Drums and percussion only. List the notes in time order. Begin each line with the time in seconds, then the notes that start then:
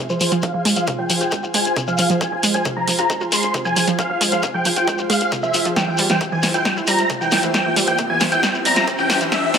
0.09 shekere
0.20 open hi-hat, shekere
0.31 closed hi-hat, shekere
0.42 kick, closed hi-hat, shekere
0.65 open hi-hat, shekere
0.76 closed hi-hat, shekere
0.87 kick, closed hi-hat, shekere
1.10 open hi-hat, shekere
1.21 closed hi-hat, shekere
1.31 kick, closed hi-hat, shekere
1.43 shekere
1.54 open hi-hat, shekere
1.65 closed hi-hat, shekere
1.76 kick, closed hi-hat, shekere
1.88 shekere
1.98 open hi-hat, shekere
2.10 closed hi-hat, shekere
2.21 kick, closed hi-hat, shekere
2.43 open hi-hat, shekere
2.54 closed hi-hat, shekere
2.65 kick, closed hi-hat, shekere
2.88 open hi-hat, shekere
2.98 closed hi-hat, shekere
3.10 kick, closed hi-hat, shekere
3.21 shekere
3.32 open hi-hat, shekere
3.43 closed hi-hat, shekere
3.54 kick, closed hi-hat, shekere
3.65 shekere
3.76 open hi-hat, shekere
3.88 closed hi-hat, shekere
3.99 kick, closed hi-hat, shekere
4.21 open hi-hat, shekere
4.32 closed hi-hat, shekere
4.43 kick, closed hi-hat, shekere
4.65 open hi-hat, shekere
4.76 closed hi-hat, shekere
4.88 kick, closed hi-hat, shekere
4.98 shekere
5.10 open hi-hat, shekere
5.20 closed hi-hat, shekere
5.32 kick, closed hi-hat, shekere
5.43 shekere
5.54 open hi-hat, shekere
5.65 closed hi-hat, shekere
5.76 kick, snare, closed hi-hat, shekere
5.98 open hi-hat, shekere
6.10 snare, closed hi-hat, shekere
6.21 kick, closed hi-hat, shekere
6.43 snare, open hi-hat, shekere
6.54 closed hi-hat, shekere
6.65 kick, snare, closed hi-hat, shekere
6.77 shekere
6.87 open hi-hat, shekere
6.98 closed hi-hat, shekere
7.09 kick, closed hi-hat, shekere
7.21 shekere
7.31 snare, open hi-hat, shekere
7.43 closed hi-hat, shekere
7.54 kick, snare, closed hi-hat, shekere
7.76 open hi-hat, shekere
7.88 closed hi-hat, shekere
7.98 kick, closed hi-hat, shekere
8.20 snare, open hi-hat, shekere
8.32 closed hi-hat, shekere
8.43 kick, snare, closed hi-hat, shekere
8.54 shekere
8.65 open hi-hat, shekere
8.76 snare, closed hi-hat, shekere
8.88 kick, closed hi-hat, shekere
8.98 shekere
9.10 snare, open hi-hat, shekere
9.21 closed hi-hat, shekere
9.32 kick, snare, closed hi-hat, shekere
9.54 snare, open hi-hat, shekere